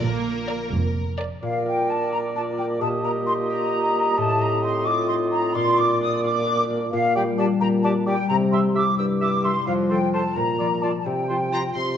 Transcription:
Already playing: harp A#2 F3 A#3 D4 F4
0.01 double bass section A#1, cello section A#2, viola section A#3, violin section A#4
0.49 violin section A#4 D5
0.73 double bass section F1, cello section F2
1.19 violin section A#4 D5
1.42 harp A#2, bassoon A#2, clarinet A#4, cor anglais D5, flute section F5
1.66 harp A#3, flute section G5
1.90 harp D4, flute section A5
2.12 harp F4, flute section A#5
2.35 harp D4, flute section A5
2.58 harp A#3, flute section G5
2.80 harp A#2, clarinet G4, cor anglais D#5, flute section A5
3.04 harp A#3, flute section A#5
3.27 harp D#4, flute section C6
3.50 harp G4, flute section A#5
3.73 harp D#4
3.95 harp A#3
4.18 harp A2, bassoon A2, flute section A5
4.40 harp C4, flute section A#5
4.63 harp D#4, flute section C6
4.85 clarinet F4, harp F4, flute section D6
5.08 harp D#4, flute section C6
5.32 harp C4, flute section A#5
5.54 harp A#2, bassoon A#2, cor anglais D5, flute section C6
5.78 harp A#3, flute section D6
6.01 harp D4, flute section D#6
6.24 harp F4, flute section D6
6.47 harp D4
6.70 harp A#3
6.93 bassoon A#2, harp A#2, flute section F5
7.15 harp G3, clarinet G4, cor anglais D5, flute section G5
7.38 harp D4, clarinet G4, cor anglais D5, flute section A5
7.61 bassoon A#2, harp G4, flute section A#5
7.83 harp D4, clarinet G4, cor anglais D5, flute section A5
8.07 harp G3, clarinet G4, cor anglais D5, flute section G5
8.30 harp C3, bassoon C3, flute section A#5
8.52 harp G3, clarinet G4, cor anglais E5, flute section C6
8.75 harp E4, clarinet G4, cor anglais E5, flute section D6
8.98 bassoon G2, harp G4, flute section E6
9.21 harp E4, clarinet G4, cor anglais E5, flute section D6
9.43 harp G3, clarinet G4, cor anglais E5, flute section C6
9.67 harp F2, bassoon F3, flute section F5
9.89 harp F3, clarinet A4, cor anglais C5, flute section G5
10.13 harp F4 A4, clarinet A4, cor anglais C5, flute section A5
10.36 harp A#2, bassoon A#2, flute section A#5
10.59 harp F3, clarinet F4, cor anglais D5
10.82 harp F4 D5, clarinet F4, cor anglais D5, flute section A5
10.99 flute section A5
11.06 harp C3, bassoon C3, flute section G5
11.29 harp F3, clarinet F4, cor anglais C5
11.52 harp F4 C5, clarinet F4, cor anglais C5, violin section A#5
11.75 harp C3, bassoon C3, violin section C6

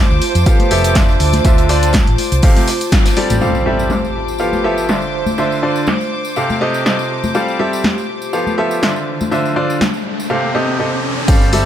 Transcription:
Already playing: ambient pad F4 C5 A5, string section C5 D6
0.10 fingered electric bass D2, tambourine
0.21 open hi-hat, tambourine
0.35 fingered electric bass F2, closed hi-hat, tambourine
0.46 grand piano F3 B3 G4 A4 F5, kick, closed hi-hat, tambourine
0.59 closed hi-hat, tambourine, high conga
0.71 fingered electric bass F1, grand piano F3 B3 G4 A4 E5, open hi-hat, tambourine
0.84 closed hi-hat, tambourine
0.95 grand piano D3 D4 F4 C5 E5, kick, snare, closed hi-hat, tambourine
1.09 snare, tambourine
1.20 fingered electric bass D2, open hi-hat, tambourine
1.33 snare, closed hi-hat, tambourine, high conga
1.44 fingered electric bass D2, grand piano D3 D4 F4 C5 E5, kick, closed hi-hat, tambourine
1.58 closed hi-hat, tambourine
1.69 grand piano D3 D4 F4 C5 D5, snare, open hi-hat, tambourine
1.83 closed hi-hat, tambourine
1.93 kick, snare, closed hi-hat, tambourine, high conga
2.07 fingered electric bass A1, closed hi-hat, tambourine
2.18 open hi-hat, tambourine
2.32 fingered electric bass C2, closed hi-hat, tambourine
2.42 grand piano C3 C4 G4 A4 F5, kick, closed hi-hat, open hi-hat, tambourine
2.56 snare, closed hi-hat, tambourine, high conga
2.68 snare, open hi-hat, tambourine
2.81 closed hi-hat, tambourine
2.92 kick, snare, closed hi-hat, tambourine
3.06 snare, closed hi-hat, tambourine
3.17 grand piano G3 C4 G4 A4 D5, open hi-hat
3.30 fingered electric bass A1, closed hi-hat, tambourine, high conga
3.41 grand piano G3 C4 G4 A4 F5, ambient pad G4, string section C5 D6, tambourine, impact
3.55 tambourine
3.66 grand piano G3 C4 G4 A4 E5
3.79 tambourine
3.90 snare, tambourine, high conga
4.05 tambourine
4.28 tambourine
4.38 grand piano F3 B3 F4 G4 A4 F5, tambourine
4.53 tambourine, high conga
4.64 grand piano F3 B3 F4 G4 A4 E5
4.78 tambourine
4.89 grand piano D3 D4 F4 C5 E5, snare, tambourine
5.02 tambourine
5.14 ambient pad D4
5.26 tambourine, high conga
5.38 grand piano D3 D4 F4 C5 E5, tambourine
5.52 tambourine
5.63 grand piano D3 D4 F4 C5 D5
5.76 tambourine
5.87 snare, tambourine, high conga
6.01 tambourine
6.25 tambourine
6.36 grand piano C3 C4 G4 A4 F5, tambourine
6.50 tambourine, high conga
6.61 grand piano C3 C4 G4 A4 D#5
6.74 tambourine
6.86 grand piano C3 C4 G4 A4 D#5, snare, tambourine
6.99 tambourine
7.24 tambourine, high conga
7.35 grand piano G3 C4 G4 A4 F5, ambient pad G4, tambourine, riser
7.48 tambourine
7.59 grand piano G3 C4 G4 A4 E5
7.73 tambourine
7.84 snare, tambourine, high conga
7.98 tambourine
8.22 tambourine
8.33 grand piano F3 B3 F4 G4 A4 F5, tambourine
8.47 tambourine, high conga
8.58 grand piano F3 B3 F4 G4 A4 E5
8.71 tambourine
8.82 grand piano D3 D4 F4 C5 E5, snare, tambourine
8.96 tambourine
9.07 ambient pad D4
9.21 tambourine, high conga
9.31 grand piano D3 D4 F4 C5 E5, tambourine
9.45 tambourine
9.56 grand piano D3 D4 F4 C5 D5
9.70 tambourine
9.81 snare, tambourine, high conga
9.94 tambourine
10.20 tambourine
10.30 grand piano C3 C4 G4 A4 F5
10.55 grand piano C3 C4 G4 A4 D#5
10.79 grand piano C3 C4 G4 A4 D#5
11.28 fingered electric bass G1, grand piano G3 C4 G4 A4 F5, string section A4 A5, kick, closed hi-hat, crash, tambourine
11.42 tambourine
11.53 grand piano G3 C4 G4 A4 E5, open hi-hat, tambourine

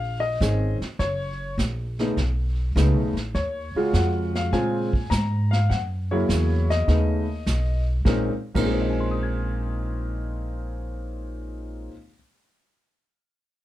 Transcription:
Already playing: upright bass A#1, grand piano F5
0.20 grand piano D#5
0.41 upright bass G#1, grand piano D#3 C4 C#4 G#4, kick, snare, hi-hat pedal
0.81 muted upright bass stroke, snare
0.99 upright bass F#1, grand piano C#5, brush sweep, kick, snare
1.58 upright bass A#1, kick, snare, hi-hat pedal
1.99 grand piano C#3 A3 B3 D#4, snare
2.17 upright bass B1, brush sweep, kick, snare
2.76 upright bass C#2, grand piano C#3 A3 B3 D#4, kick, snare, hi-hat pedal
2.93 upright bass B1
3.13 upright bass A1, snare
3.35 upright bass D#2, grand piano C#5, brush sweep, kick, snare
3.75 grand piano C#3 G#3 F4 F#4, muted upright bass stroke
3.93 upright bass F2, grand piano F#5, kick, snare, hi-hat pedal
4.35 grand piano F5, snare
4.52 upright bass A#2, grand piano C#3 G#3 C4 F4 G#5, brush sweep, kick, snare
4.93 kick
5.10 upright bass G#2, grand piano A#5, kick, snare, hi-hat pedal
5.51 grand piano F5, snare
5.70 upright bass F#2, grand piano F#5, brush sweep, kick, snare
6.11 grand piano C#3 F#3 A#3 E4 C#5
6.29 upright bass E2, kick, snare, hi-hat pedal
6.70 grand piano D#5, snare
6.88 upright bass D#2, grand piano C#3 A3 B3 D#4, brush sweep, kick, snare
7.46 upright bass B1, kick, snare, hi-hat pedal
8.05 upright bass A#1, grand piano A#2 G#3 C4 C#4 D#4 A#4, kick, snare
8.55 upright bass A#1, grand piano A#2 G#3 C4 C#4 D#4 A#4, kick, crash
8.65 grand piano G#4
8.73 grand piano C5
8.81 grand piano D#5
8.90 grand piano G#5
9.00 grand piano C6
9.11 grand piano D#6
9.23 grand piano G#6

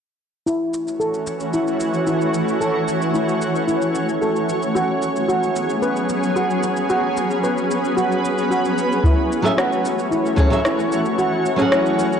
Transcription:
0.46 ambient pad E3 A3 C#4 F#4 C#5, steel pan E4, shaker
0.74 shaker
0.88 shaker
1.00 steel pan A4, shaker
1.14 shaker
1.27 shaker
1.40 shaker
1.54 steel pan E4, shaker
1.68 shaker
1.80 shaker
1.94 shaker
2.07 steel pan E4, shaker
2.21 shaker
2.34 shaker
2.48 shaker
2.61 steel pan A4, shaker
2.88 shaker
3.02 shaker
3.14 steel pan E4, shaker
3.29 shaker
3.42 shaker
3.55 shaker
3.68 steel pan E4, shaker
3.82 shaker
3.95 shaker
4.09 shaker
4.22 steel pan A4, shaker
4.36 shaker
4.49 shaker
4.63 shaker
4.74 ambient pad F#3 B3 G#4, steel pan F#4, shaker
5.02 shaker
5.16 shaker
5.29 steel pan F#4, shaker
5.43 shaker
5.56 shaker
5.69 shaker
5.82 steel pan B4, shaker
5.96 shaker
6.09 shaker
6.23 shaker
6.36 steel pan F#4, shaker
6.50 shaker
6.63 shaker
6.76 shaker
6.90 steel pan F#4, ambient pad B4, shaker
7.17 shaker
7.31 shaker
7.43 steel pan B4, shaker
7.57 shaker
7.71 shaker
7.84 shaker
7.97 steel pan F#4, shaker
8.12 shaker
8.25 shaker
8.38 shaker
8.51 steel pan F#4, shaker
8.65 shaker
8.78 shaker
8.92 shaker
9.04 ambient pad E3 A3 F#4 C#5, steel pan E4, kick, shaker
9.32 shaker
9.42 nylon-string guitar F#3 C#4 G#4 A4 E5, shaker
9.58 steel pan F#4, cross-stick, shaker
9.72 shaker
9.85 shaker
9.99 shaker
10.11 steel pan E4, shaker
10.26 shaker
10.36 nylon-string guitar F#3 C#4 G#4 A4 C#5, kick, shaker
10.50 nylon-string guitar F#3 C#4 G#4 A4 E5, shaker
10.65 steel pan E4, cross-stick, shaker
10.79 shaker
10.92 shaker
11.05 shaker
11.19 steel pan F#4, shaker
11.46 shaker
11.56 nylon-string guitar F#3 C#4 G#4, shaker
11.60 nylon-string guitar A4 F#5
11.72 steel pan E4, cross-stick, shaker
11.86 shaker
11.99 shaker
12.13 shaker

